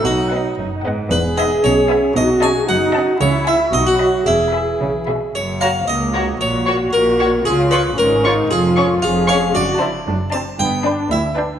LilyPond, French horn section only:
\new Staff \with { instrumentName = "French horn section" } { \time 2/4 \key e \major \tempo 4 = 114 fis4 r4 | b8 dis'8 cis'4 | dis'8 gis'8 fis'4 | cis'8 e'8 dis'16 fis8. |
e4. r8 | \key fis \major r2 | r2 | r2 |
r2 | \key g \major r2 | r2 | }